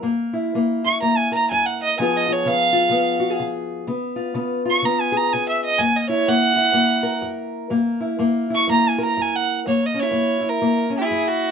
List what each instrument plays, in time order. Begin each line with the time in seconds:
0.02 steel-string acoustic guitar F#2 A#3
0.33 steel-string acoustic guitar E4
0.54 steel-string acoustic guitar F#2 A#3
0.85 steel-string acoustic guitar E4, fiddle C#6
1.02 steel-string acoustic guitar F#2 A#3, fiddle A#5
1.17 fiddle G#5
1.32 steel-string acoustic guitar A#4, fiddle A#5
1.51 steel-string acoustic guitar F#2, fiddle G#5
1.66 fiddle F#5
1.83 fiddle D#5
1.99 steel-string acoustic guitar C#3 F3 B3 F4 G#4, fiddle G#5
2.17 fiddle D#5
2.28 steel-string acoustic guitar F4
2.32 fiddle C#5
2.45 steel-string acoustic guitar C#3 B3, fiddle F5
2.73 steel-string acoustic guitar F4
2.89 steel-string acoustic guitar C#3 B3
3.20 steel-string acoustic guitar F#4
3.30 steel-string acoustic guitar G#4
3.40 steel-string acoustic guitar C#3
3.87 steel-string acoustic guitar C#3 B3
4.16 steel-string acoustic guitar F4
4.34 steel-string acoustic guitar C#3 B3
4.65 steel-string acoustic guitar F4
4.71 fiddle C#6
4.82 steel-string acoustic guitar C#3 B3, fiddle A#5
5.01 fiddle G#5
5.12 steel-string acoustic guitar G#4
5.17 fiddle A#5
5.33 steel-string acoustic guitar C#3, fiddle G#5
5.49 fiddle E5
5.65 fiddle D#5
5.78 steel-string acoustic guitar F#2 A#3, fiddle G#5
5.96 fiddle D#5
6.09 steel-string acoustic guitar E4, fiddle C#5
6.28 steel-string acoustic guitar F#2 A#3, fiddle F#5
6.56 steel-string acoustic guitar E4
6.73 steel-string acoustic guitar F#2 A#3
7.03 steel-string acoustic guitar A#4
7.22 steel-string acoustic guitar F#2
7.70 steel-string acoustic guitar F#2 A#3
8.01 steel-string acoustic guitar E4
8.19 steel-string acoustic guitar F#2 A#3
8.50 steel-string acoustic guitar E4
8.55 fiddle C#6
8.68 steel-string acoustic guitar F#2 A#3, fiddle A#5
8.89 fiddle G#5
8.98 steel-string acoustic guitar A#4
9.05 fiddle A#5
9.17 steel-string acoustic guitar F#2
9.22 fiddle G#5
9.36 fiddle F#5
9.67 steel-string acoustic guitar F#2 A#3, fiddle C#5
9.86 fiddle D#5
9.94 steel-string acoustic guitar C#4
10.00 steel-string acoustic guitar E4, fiddle C#5
10.11 steel-string acoustic guitar F#2 A#3
10.41 steel-string acoustic guitar E4
10.49 fiddle A#4
10.61 steel-string acoustic guitar F#2 A#3
10.90 steel-string acoustic guitar C#4
10.98 steel-string acoustic guitar E4, fiddle G#4
11.11 steel-string acoustic guitar F#2
11.28 fiddle F#4